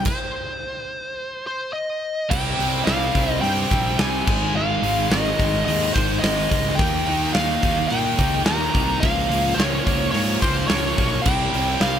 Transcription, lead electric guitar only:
0.06 1.46 C5 medium
1.47 1.73 C5 medium
1.73 2.32 D#5 medium
2.30 2.85 G5 loud
2.85 3.41 F5 loud
3.41 4.00 G5 medium
4.00 4.56 G#5 medium
4.56 5.13 F5 loud
5.12 5.64 D#5 medium
5.66 5.94 D#5 medium
5.94 6.19 C5 medium
6.19 6.73 D#5 medium
6.75 7.33 G5 loud
7.34 7.86 F5 loud
7.88 8.41 G5 loud
8.46 9.04 A#5 loud
9.00 9.59 F5 loud
9.54 10.10 C#5 medium
10.11 10.38 C#5 medium
10.42 10.67 C5 medium
10.68 11.20 C#5 medium
11.22 11.81 G5 loud
11.82 11.99 F5 loud

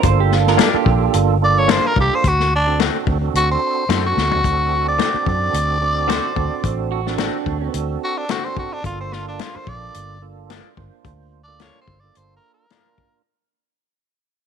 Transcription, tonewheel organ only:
0.04 0.69 A#3 medium
0.04 0.69 D4 medium
0.04 0.69 F4 medium
0.04 0.69 A4 loud
0.74 1.38 A#3 medium
0.74 1.38 D4 medium
0.74 1.38 F4 medium
0.74 1.38 A4 loud
1.42 1.94 A#3 medium
1.42 1.94 D4 medium
1.42 1.94 F4 medium
1.42 1.94 A4 medium
1.97 2.24 A#3 medium
1.97 2.24 D4 medium
1.97 2.24 F4 medium
1.97 2.24 A4 medium
2.66 3.18 C4 medium
2.66 3.18 D4 medium
2.66 3.18 F#4 medium
2.66 3.18 A4 medium
3.21 3.85 C4 medium
3.21 3.85 D4 medium
3.21 3.85 F#4 medium
3.21 3.85 A4 medium
3.89 4.41 C4 medium
3.89 4.41 D4 medium
3.89 4.41 F#4 medium
3.89 4.41 A4 medium
4.44 5.10 C4 medium
4.44 5.10 D4 medium
4.44 5.09 F#4 medium
4.44 5.10 A4 medium
5.13 5.78 C4 medium
5.13 5.78 D4 medium
5.13 5.78 F#4 medium
5.13 5.78 A4 medium
5.81 6.34 C4 medium
5.81 6.33 D4 medium
5.81 6.34 F#4 medium
5.81 6.33 A4 medium
6.36 7.02 C4 medium
6.36 7.02 D4 medium
6.36 7.02 F#4 medium
6.36 7.02 A4 loud
7.07 7.58 C4 medium
7.07 7.58 D4 medium
7.07 7.58 F#4 medium
7.07 7.58 A4 medium
7.61 8.26 C4 medium
7.61 8.25 D4 medium
7.61 8.25 F#4 medium
7.61 8.26 A4 loud
8.29 8.81 C4 medium
8.29 8.81 D4 medium
8.29 8.81 F#4 medium
8.29 8.81 A4 medium
8.84 9.50 A#3 medium
8.84 9.50 D4 medium
8.84 9.50 F4 medium
8.84 9.50 A4 medium
9.54 10.19 A#3 medium
9.54 10.18 D4 medium
9.54 10.19 F4 medium
9.54 10.18 A4 medium
10.22 10.74 A#3 medium
10.22 10.74 D4 medium
10.22 10.74 F4 medium
10.22 10.74 A4 medium
10.77 11.43 A#3 medium
10.77 11.42 D4 medium
10.77 11.43 F4 medium
10.77 11.43 C5 medium
11.48 11.99 A#3 medium
11.48 11.99 D4 medium
11.48 11.99 F4 medium
11.48 11.99 A4 medium
12.03 12.67 A#3 medium
12.03 12.66 D4 medium
12.03 12.67 F4 medium
12.03 12.67 A4 medium
12.71 13.22 A#3 medium
12.71 13.22 D4 medium
12.71 13.22 F4 medium
12.71 13.22 A#4 medium

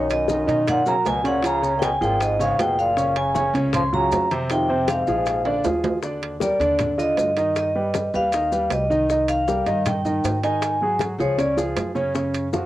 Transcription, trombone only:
0.12 0.65 F#2 medium
0.69 0.86 A#2 medium
0.87 0.96 C#3 medium
1.06 1.24 B2 medium
1.25 1.43 A#2 medium
1.45 1.76 C#3 medium
1.76 1.81 A#2 medium
1.82 1.91 B2 medium
2.02 2.20 A#2 medium
2.21 2.39 G#2 medium
2.40 2.58 G#2 medium
2.59 2.77 B2 medium
2.79 3.14 A#2 medium
3.17 3.52 C#3 medium
3.75 3.83 F3 medium
3.95 4.29 C#3 medium
4.51 4.86 C3 medium
4.89 5.61 G#2 medium

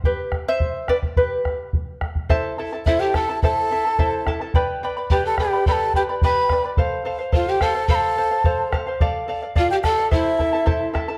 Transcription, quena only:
2.85 3.01 E5 medium
3.00 3.16 G5 medium
3.15 3.42 A5 medium
3.43 4.23 A5 medium
5.11 5.24 G5 medium
5.26 5.38 A5 medium
5.40 5.65 G5 medium
5.68 5.73 B5 medium
5.72 5.93 A5 medium
5.96 6.02 G5 medium
6.24 6.62 B5 medium
7.35 7.51 F5 medium
7.49 7.64 G5 medium
7.63 7.90 A5 loud
7.91 7.96 B5 medium
7.95 8.70 A5 medium
9.57 9.70 F5 medium
9.70 9.76 G5 medium
9.84 10.10 A5 medium
10.12 10.91 E5 medium

